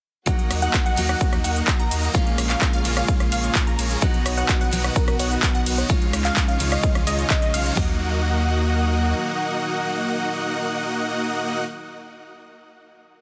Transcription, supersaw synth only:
0.27 A#3 D#4 F#4 D#5 F#5
0.62 A#3 D#4 F#4 D#5 F#5
0.86 A#3 D#4 F#4 D#5 F#5
1.09 A#3 D#4 F#4 D#5 F#5
1.44 A#3 D#4 F#4 D#5 F#5
1.80 A#3 D#4 F#4 D#5 A#5
2.15 A#3 F4 G#4 C#5 F5
2.50 A#3 F4 G#4 C#5 F5
2.73 A#3 F4 G#4 C#5 F5
2.97 A#3 F4 G#4 C#5 F5
3.32 A#3 F4 G#4 C#5 F5
3.67 A#3 F4 G#4 C#5 A#5
4.02 B3 D#4 F#4 D#5 F#5
4.37 B3 D#4 F#4 D#5 F#5
4.61 B3 D#4 F#4 D#5 F#5
4.84 B3 D#4 F#4 D#5 F#5
5.19 B3 D#4 F#4 D#5 F#5
5.54 B3 D#4 F#4 D#5 F#5
5.90 G#3 D#4 F4 C#5 F5
6.25 G#3 D#4 F4 C#5 F5
6.48 G#3 D#4 F4 C#5 F5
6.72 G#3 D#4 F4 C#5 F5
7.07 G#3 D#4 F4 C#5 D#5
7.42 G#3 D#4 F4 C#5 D#5
7.54 G#3 D#4 F4 C#5 F5
7.77 A#3 D#4 F#4 D#5 F#5

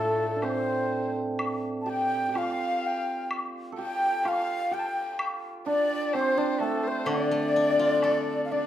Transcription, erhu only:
Already playing: A4
0.42 C5
1.89 G5
2.37 F5
3.79 G5
4.26 F5
4.72 G5
4.79 A5
4.86 G5
5.68 D5
6.13 C5
6.60 A4
6.83 C5
7.08 D5
8.51 D5

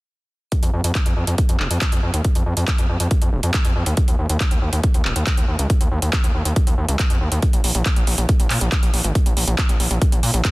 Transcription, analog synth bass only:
0.63 F2
0.74 F2
0.84 F2
1.06 F2
1.17 F2
1.27 F2
1.49 F2
1.60 F1
1.71 F2
1.92 F2
2.03 F2
2.14 D#2
2.35 F2
2.46 F2
2.57 F2
2.79 F2
2.89 F2
3.00 F2
3.22 F2
3.33 F1
3.43 F2
3.65 F2
3.76 F2
3.87 D#2
4.08 D#2
4.19 D#2
4.30 D#2
4.51 D#2
4.62 D#2
4.73 D#2
4.94 D#2
5.05 D#1
5.16 D#2
5.38 D#2
5.48 D#2
5.59 C#2
5.81 D#2
5.92 D#2
6.02 D#2
6.24 D#2
6.35 D#2
6.45 D#2
6.67 D#2
6.78 D#2
6.89 C#2
7.10 F2
7.21 D#2
7.32 D#2
7.53 A#1
7.64 A#1
7.75 A#1
7.97 A#1
8.07 A#1
8.18 A#1
8.40 A#1
8.51 A#2
8.61 A#1
8.83 A#1
8.94 A#1
9.04 G#1
9.26 A#1
9.37 A#1
9.47 A#1
9.69 A#1
9.80 A#1
9.91 A#1
10.12 A#1
10.23 A#2
10.34 A#1

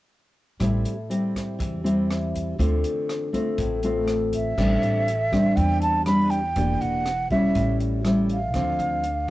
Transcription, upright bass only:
0.60 A1
1.60 E2
2.59 D2
3.58 A1
4.58 A1
4.82 A1
5.57 E2
6.56 E1
6.81 E1
7.55 A1
8.54 D2
8.79 D2

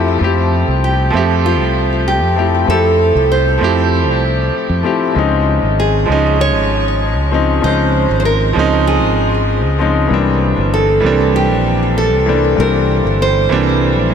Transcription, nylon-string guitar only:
0.84 G4
1.46 F4
2.08 G4
2.70 A4
3.32 C5
5.80 G#4
6.41 C#5
7.64 C5
8.20 C5
8.25 A#4
8.87 G#4
10.74 A4
11.36 G4
11.98 A4
12.60 A#4
13.22 C5

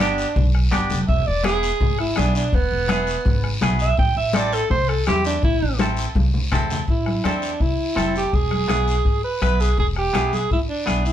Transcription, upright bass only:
Already playing: G1
0.36 B1
0.72 G1
0.91 F1
1.09 E1
1.28 E1
1.80 G#1
2.17 B1
2.53 E1
2.72 E1
3.26 G#1
3.62 B1
3.99 A1
4.16 A1
4.71 C2
5.07 E2
5.43 A1
5.62 A1
6.15 C2
6.52 E2
6.88 A1
7.24 E2
7.60 C2
7.96 F1
8.33 E1
8.69 B1
9.05 G#1
9.42 B1
9.78 E1
10.13 B1
10.51 G#1
10.87 B1

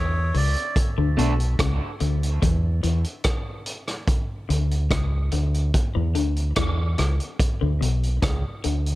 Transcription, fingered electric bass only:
Already playing: E2
0.35 C#2
0.98 D2
1.18 B1
1.60 C#2
2.01 D2
2.43 E2
2.84 E2
4.50 D2
4.91 C#2
5.33 D2
5.96 E2
6.16 D2
6.57 E2
6.99 C#2
7.62 D2
7.82 B1
8.23 C#2
8.65 D2

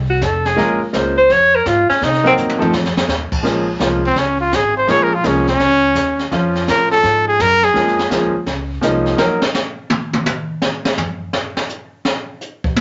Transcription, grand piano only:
0.56 G#3 A#3 C#4 F4 A#4
0.93 G#3 A#3 C#4 F4 C5
2.24 F#3 A#3 C4 D#4 A#4
2.58 F3 A3 C4 D#4 A4
3.43 F3 G#3 A#3 C#4 G#4
3.79 F3 G#3 A#3 C#4 F4
4.88 F3 G#3 A#3 C#4 G#4
5.23 F3 G#3 A#3 C#4 G#4
6.31 F3 C#4 F4
7.74 F3 G#3 A#3 C#4 G#4
8.10 F3 G#3 A#3 C#4 G#4
8.81 F3 G#3 A#3 C#4 D#4
9.17 F#3 A#3 C#4 D#4 A#4

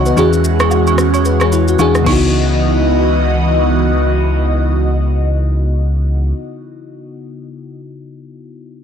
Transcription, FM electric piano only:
Already playing: B3 D#4 E4 F#4 C#5 D#5
0.06 B4
0.16 E3 C#4 F#4 G#4
1.14 C#5
1.26 B4
1.42 G#4
1.53 E4
1.69 F#4
1.79 E3 D4 F#4 G#4
2.02 C#3 B3
2.07 D#4 E4
2.12 F#4

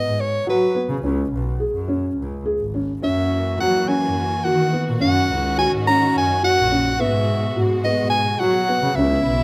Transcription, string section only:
3.03 E3 A#3 F#4
5.02 D#3 C#4
6.99 B2 G#3
8.96 C#3 B3 E4

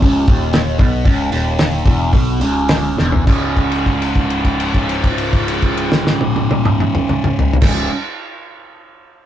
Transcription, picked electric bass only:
0.02 C#1
0.28 D#1
0.79 B1
1.06 C#1
1.32 D#1
1.86 E1
2.13 B1
2.39 C#1
2.97 E1
3.27 C#1
7.62 C#1

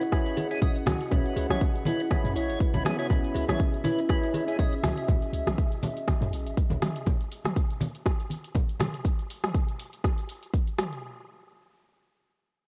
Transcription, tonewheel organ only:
0.13 C#4 E4 B4
0.51 C#4 E4 G#4
0.62 C#4 E4 D#5
1.12 C#4 E4 B4
1.50 C#4 E4 C#5
1.86 C#4 E4 B4
2.11 C#4 E4 B4
2.36 C#4 E4 C#5
2.74 C#4 E4 B4
2.85 C#4 E4 G#4
2.99 C#4 E4 C#5
3.10 C#4 E4 B4
3.49 C#4 E4 C#5
3.84 C#4 E4 B4
4.09 C#4 E4 B4
4.48 C#4 E4 G#4
4.59 C#4 E4 D#5

